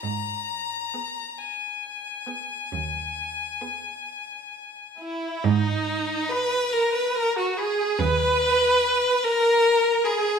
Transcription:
<<
  \new Staff \with { instrumentName = "Violin" } { \time 12/8 \key gis \minor \tempo 4. = 46 ais''4. gis''1 r8 | r4 b''8 r4 b''8 r4 b''8 r4 b''8 | }
  \new Staff \with { instrumentName = "Viola" } { \time 12/8 \key gis \minor r4 b8 r4 b8 r4 b8 r4 e'8 | dis'4 b'8 ais'16 b'16 ais'16 fis'16 gis'8 b'4. ais'4 gis'8 | }
  \new Staff \with { instrumentName = "Violin" } { \time 12/8 \key gis \minor r4 gis'8 r4 gis'8 r4 gis'8 r4 e'8 | dis'4 b'8 ais'16 b'16 ais'16 fis'16 gis'8 b'4. ais'4 gis'8 | }
  \new Staff \with { instrumentName = "Cello" } { \clef bass \time 12/8 \key gis \minor gis,4. r4. dis,4. r4. | gis,4. r4. dis,4. r4. | }
>>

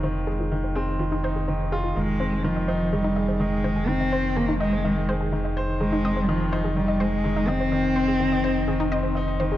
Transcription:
<<
  \new Staff \with { instrumentName = "Synth arpeggio sound" } { \time 4/4 \key c \phrygian \tempo 4 = 125 c''16 r16 aes'16 f'16 ees'16 c''16 aes'16 r16 f'16 ees'16 c''16 aes'16 c''16 r16 aes'16 f'16 | ees''16 r16 c''16 aes'16 ees'16 ees''16 c''16 r16 aes'16 ees'16 ees''16 c''16 ees''16 r16 c''16 aes'16 | ees'16 ees''16 c''16 r16 aes'16 ees'16 ees''16 c''16 ees''16 r16 c''16 aes'16 ees'16 ees''16 c''16 r16 | aes'16 ees'16 ees''16 c''16 ees''16 r16 c''16 aes'16 ees'16 ees''16 c''16 r16 aes'16 ees'16 ees''16 c''16 |
ees''16 r16 c''16 aes'16 ees'16 ees''16 c''16 r16 aes'16 ees'16 ees''16 c''16 ees''16 r16 c''16 aes'16 | }
  \new Staff \with { instrumentName = "Cello" } { \clef bass \time 4/4 \key c \phrygian r1 | aes4 f4 g4 aes4 | c'4 bes8 aes4 r4. | aes4 f4 g8 aes4 c'8~ |
c'2. r4 | }
  \new Staff \with { instrumentName = "Upright piano" } { \clef bass \time 4/4 \key c \phrygian ees8 aes8 ees8 c'8 ees8 ees'8 ees8 f'8 | ees8 c'8 ees8 ees'8 ees8 aes'8 ees8 ees8 | ees8 c'8 ees8 ees'8 ees8 aes'8 ees8 c''8 | ees8 c'8 ees8 ees'8 ees8 aes'8 ees8 ees8 |
ees8 c'8 ees8 ees'8 ees8 c'8 ees'8 ees8 | }
  \new Staff \with { instrumentName = "Analog synth bass" } { \clef bass \time 4/4 \key c \phrygian f,,1 | f,,1~ | f,,1~ | f,,1~ |
f,,1 | }
>>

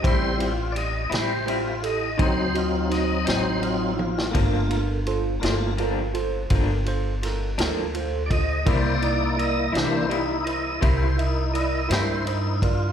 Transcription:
<<
  \new Staff \with { instrumentName = "Tine electric piano" } { \time 12/8 \key g \minor \tempo 4. = 56 <e' g' c''>8 <e' g' c''>8 <e' g' d''>8 <e' g' c''>8 <e' g' c''>8 <e' g' a'>8 <ees' fis' c''>8 <ees' fis' ees''>8 <ees' fis' c''>8 <ees' fis' c''>8 <ees' fis' c''>8 <ees' fis' c''>8 | <f' a' bes'>8 <f' a' bes'>8 <f' a' c''>8 <f' a' c''>8 <f' a' bes'>8 <f' a' c''>8 <f' a' bes'>8 <f' a' c''>8 <f' a' bes'>8 <f' a' bes'>8 <f' a' c''>8 <f' a' c''>8 | <e' bes' d''>8 <e' bes' d''>8 <e' bes' d''>8 <e' bes' d''>8 <e' bes' d''>8 <e' bes' c''>8 <e' bes' e''>8 <e' bes' e''>8 <e' bes' d''>8 <e' bes' d''>8 <e' bes' c''>8 <e' bes' d''>8 | }
  \new Staff \with { instrumentName = "Tonewheel organ" } { \time 12/8 \key g \minor << { c''8 f'8 <d'' ees''>8 c''8 f'8 ees''8 c''8 f'8 ees''8 c''8 f'8 <e' f'>8~ | <e' f'>2~ <e' f'>8 r2. <d'' ees''>8 | c''8 ees'8 <d'' ees''>8 c''8 ees'8 ees''8 c''8 ees'8 ees''8 c''8 ees'8 <e' f'>8 | } \\ { <g c' e'>8 r2 r8 <fis c' ees'>2 <fis c' ees'>8 r8 | <a bes f'>8 r4 <a bes f'>8 r1 | <bes e' d''>4. <e bes d'>8 r1 | } >> }
  \new Staff \with { instrumentName = "Clean electric guitar" } { \time 12/8 \key g \minor <a, g c' e'>8 r4 <g c' e'>8 <a, g c' e'>8 r8 <d fis c' ees'>8 r4 <fis c' ees'>8 r4 | <g, f bes d'>8 r4 <f bes d'>8 <g, f bes d'>8 r8 <g, f bes d'>8 r4 <f bes d'>8 r4 | <c g bes e'>8 r4 <g bes e'>8 <c g bes e'>8 r8 <c g bes e'>8 r4 <g bes e'>8 r4 | }
  \new Staff \with { instrumentName = "Upright bass" } { \clef bass \time 12/8 \key g \minor a,,4. a,,4. d,4. a,,4. | g,,4. g,,4. g,,4. d,4. | c,4. c,4. c,4. g,4. | }
  \new DrumStaff \with { instrumentName = "Drums" } \drummode { \time 12/8 <bd cymr>8 cymr8 cymr8 <cymr sn>8 cymr8 cymr8 <bd cymr>8 cymr8 <cymr sn>8 <cymr sn>8 cymr8 tommh16 sn16 | <bd cymr>8 cymr8 cymr8 <cymr sn>8 cymr8 cymr8 <bd cymr>8 cymr8 <cymr sn>8 <cymr sn>8 cymr8 <bd cymr>8 | <bd cymr>8 cymr8 cymr8 <cymr sn>8 cymr8 cymr8 <bd cymr>8 cymr8 cymr8 <cymr sn>8 cymr8 <bd cymr>8 | }
>>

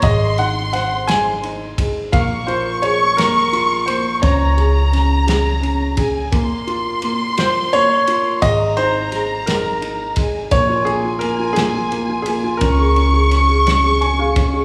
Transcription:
<<
  \new Staff \with { instrumentName = "Violin section" } { \time 6/8 \key bes \minor \tempo 4. = 57 c'''2~ c'''8 r8 | des'''2. | bes''2~ bes''8 aes''8 | c'''2. |
bes''2~ bes''8 aes''8 | aes''2. | des'''2. | }
  \new Staff \with { instrumentName = "Grand piano" } { \time 6/8 \key bes \minor ees''8 ges''8 ges''8 aes''4 r8 | f''8 c''8 des''8 bes'4 c''8 | des''2~ des''8 r8 | r4. c''8 des''4 |
ees''8 c''4 bes'4 r8 | des''8 aes'8 bes'8 aes'4 aes'8 | bes'2~ bes'8 r8 | }
  \new Staff \with { instrumentName = "Felt piano" } { \time 6/8 \key bes \minor << { r2. | r2. | r2. | r2. |
r2. | r2. | r2 aes''16 f''16 des''8 | } \\ { aes8 ees'8 c''8 aes8 ees'8 aes8 | bes8 f'8 aes'8 bes8 f'8 bes8 | des'8 aes'8 des'8 aes'8 des'8 aes'8 | bes8 f'8 bes8 f'8 bes8 f'8 |
aes8 ees'8 aes'8 aes8 ees'8 aes8 | bes16 f'16 bes16 f'16 bes16 f'16 bes16 f'16 bes16 f'16 bes16 f'16 | des'16 aes'16 des'16 aes'16 des'16 aes'16 des'16 aes'16 des'16 aes'16 des'16 aes'16 | } >> }
  \new Staff \with { instrumentName = "Upright bass" } { \clef bass \time 6/8 \key bes \minor aes,,2. | bes,,2. | des,2. | bes,,2. |
aes,,2. | bes,,2. | des,2. | }
  \new DrumStaff \with { instrumentName = "Drums" } \drummode { \time 6/8 <bd cymr>8 cymr8 <cymr sn>8 <cymr sn>8 cymr8 <bd cymr>8 | <bd cymr>8 cymr8 cymr8 <cymr sn>8 cymr8 cymr8 | <bd cymr>8 cymr8 <cymr sn>8 <cymr sn>8 cymr8 <bd cymr>8 | <bd cymr>8 cymr8 cymr8 <cymr sn>8 cymr8 cymr8 |
<bd cymr>8 cymr8 <cymr sn>8 <cymr sn>8 cymr8 <bd cymr>8 | <bd cymr>8 cymr8 cymr8 <cymr sn>8 cymr8 cymr8 | <bd cymr>8 cymr8 <cymr sn>8 <cymr sn>8 cymr8 <bd cymr>8 | }
>>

